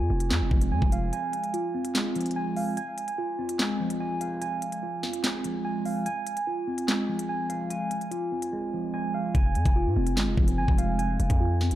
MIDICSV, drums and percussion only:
0, 0, Header, 1, 2, 480
1, 0, Start_track
1, 0, Key_signature, -4, "minor"
1, 0, Tempo, 410959
1, 1318, Time_signature, 4, 2, 24, 8
1, 13728, End_track
2, 0, Start_track
2, 0, Title_t, "Drums"
2, 237, Note_on_c, 9, 42, 83
2, 354, Note_off_c, 9, 42, 0
2, 357, Note_on_c, 9, 38, 114
2, 365, Note_on_c, 9, 39, 91
2, 473, Note_off_c, 9, 38, 0
2, 482, Note_off_c, 9, 39, 0
2, 597, Note_on_c, 9, 36, 100
2, 714, Note_off_c, 9, 36, 0
2, 717, Note_on_c, 9, 42, 78
2, 834, Note_off_c, 9, 42, 0
2, 957, Note_on_c, 9, 36, 86
2, 1074, Note_off_c, 9, 36, 0
2, 1077, Note_on_c, 9, 42, 68
2, 1194, Note_off_c, 9, 42, 0
2, 1317, Note_on_c, 9, 42, 75
2, 1434, Note_off_c, 9, 42, 0
2, 1557, Note_on_c, 9, 42, 80
2, 1673, Note_off_c, 9, 42, 0
2, 1677, Note_on_c, 9, 42, 39
2, 1793, Note_off_c, 9, 42, 0
2, 1797, Note_on_c, 9, 42, 69
2, 1913, Note_off_c, 9, 42, 0
2, 2156, Note_on_c, 9, 42, 82
2, 2273, Note_off_c, 9, 42, 0
2, 2276, Note_on_c, 9, 38, 117
2, 2279, Note_on_c, 9, 42, 79
2, 2285, Note_on_c, 9, 39, 92
2, 2393, Note_off_c, 9, 38, 0
2, 2395, Note_off_c, 9, 42, 0
2, 2402, Note_off_c, 9, 39, 0
2, 2517, Note_on_c, 9, 42, 63
2, 2577, Note_off_c, 9, 42, 0
2, 2577, Note_on_c, 9, 42, 64
2, 2637, Note_off_c, 9, 42, 0
2, 2637, Note_on_c, 9, 42, 64
2, 2697, Note_off_c, 9, 42, 0
2, 2697, Note_on_c, 9, 42, 67
2, 2813, Note_off_c, 9, 42, 0
2, 2996, Note_on_c, 9, 46, 52
2, 3113, Note_off_c, 9, 46, 0
2, 3238, Note_on_c, 9, 42, 73
2, 3355, Note_off_c, 9, 42, 0
2, 3477, Note_on_c, 9, 42, 75
2, 3594, Note_off_c, 9, 42, 0
2, 3596, Note_on_c, 9, 42, 64
2, 3713, Note_off_c, 9, 42, 0
2, 4077, Note_on_c, 9, 42, 81
2, 4193, Note_off_c, 9, 42, 0
2, 4196, Note_on_c, 9, 38, 110
2, 4205, Note_on_c, 9, 39, 92
2, 4313, Note_off_c, 9, 38, 0
2, 4322, Note_off_c, 9, 39, 0
2, 4558, Note_on_c, 9, 42, 82
2, 4674, Note_off_c, 9, 42, 0
2, 4917, Note_on_c, 9, 42, 69
2, 5033, Note_off_c, 9, 42, 0
2, 5158, Note_on_c, 9, 42, 75
2, 5274, Note_off_c, 9, 42, 0
2, 5397, Note_on_c, 9, 42, 78
2, 5514, Note_off_c, 9, 42, 0
2, 5517, Note_on_c, 9, 42, 66
2, 5633, Note_off_c, 9, 42, 0
2, 5878, Note_on_c, 9, 38, 67
2, 5995, Note_off_c, 9, 38, 0
2, 5997, Note_on_c, 9, 42, 80
2, 6113, Note_off_c, 9, 42, 0
2, 6117, Note_on_c, 9, 38, 113
2, 6120, Note_on_c, 9, 42, 78
2, 6126, Note_on_c, 9, 39, 91
2, 6234, Note_off_c, 9, 38, 0
2, 6236, Note_off_c, 9, 42, 0
2, 6242, Note_off_c, 9, 39, 0
2, 6358, Note_on_c, 9, 42, 75
2, 6475, Note_off_c, 9, 42, 0
2, 6838, Note_on_c, 9, 46, 52
2, 6955, Note_off_c, 9, 46, 0
2, 7078, Note_on_c, 9, 42, 72
2, 7195, Note_off_c, 9, 42, 0
2, 7318, Note_on_c, 9, 42, 79
2, 7435, Note_off_c, 9, 42, 0
2, 7437, Note_on_c, 9, 42, 68
2, 7554, Note_off_c, 9, 42, 0
2, 7918, Note_on_c, 9, 42, 82
2, 8035, Note_off_c, 9, 42, 0
2, 8039, Note_on_c, 9, 38, 112
2, 8047, Note_on_c, 9, 39, 89
2, 8155, Note_off_c, 9, 38, 0
2, 8164, Note_off_c, 9, 39, 0
2, 8399, Note_on_c, 9, 42, 82
2, 8516, Note_off_c, 9, 42, 0
2, 8758, Note_on_c, 9, 42, 71
2, 8875, Note_off_c, 9, 42, 0
2, 8999, Note_on_c, 9, 42, 75
2, 9116, Note_off_c, 9, 42, 0
2, 9238, Note_on_c, 9, 42, 78
2, 9355, Note_off_c, 9, 42, 0
2, 9358, Note_on_c, 9, 42, 42
2, 9475, Note_off_c, 9, 42, 0
2, 9478, Note_on_c, 9, 42, 70
2, 9595, Note_off_c, 9, 42, 0
2, 9837, Note_on_c, 9, 42, 80
2, 9954, Note_off_c, 9, 42, 0
2, 10918, Note_on_c, 9, 36, 123
2, 10918, Note_on_c, 9, 42, 73
2, 11034, Note_off_c, 9, 36, 0
2, 11035, Note_off_c, 9, 42, 0
2, 11157, Note_on_c, 9, 42, 76
2, 11274, Note_off_c, 9, 42, 0
2, 11277, Note_on_c, 9, 42, 66
2, 11278, Note_on_c, 9, 36, 100
2, 11393, Note_off_c, 9, 42, 0
2, 11394, Note_off_c, 9, 36, 0
2, 11757, Note_on_c, 9, 42, 81
2, 11874, Note_off_c, 9, 42, 0
2, 11877, Note_on_c, 9, 38, 113
2, 11885, Note_on_c, 9, 39, 91
2, 11994, Note_off_c, 9, 38, 0
2, 12002, Note_off_c, 9, 39, 0
2, 12117, Note_on_c, 9, 36, 105
2, 12234, Note_off_c, 9, 36, 0
2, 12237, Note_on_c, 9, 42, 79
2, 12354, Note_off_c, 9, 42, 0
2, 12477, Note_on_c, 9, 36, 84
2, 12594, Note_off_c, 9, 36, 0
2, 12596, Note_on_c, 9, 42, 74
2, 12713, Note_off_c, 9, 42, 0
2, 12837, Note_on_c, 9, 42, 74
2, 12954, Note_off_c, 9, 42, 0
2, 13077, Note_on_c, 9, 42, 76
2, 13194, Note_off_c, 9, 42, 0
2, 13197, Note_on_c, 9, 36, 97
2, 13197, Note_on_c, 9, 42, 66
2, 13314, Note_off_c, 9, 36, 0
2, 13314, Note_off_c, 9, 42, 0
2, 13558, Note_on_c, 9, 38, 65
2, 13675, Note_off_c, 9, 38, 0
2, 13677, Note_on_c, 9, 42, 81
2, 13728, Note_off_c, 9, 42, 0
2, 13728, End_track
0, 0, End_of_file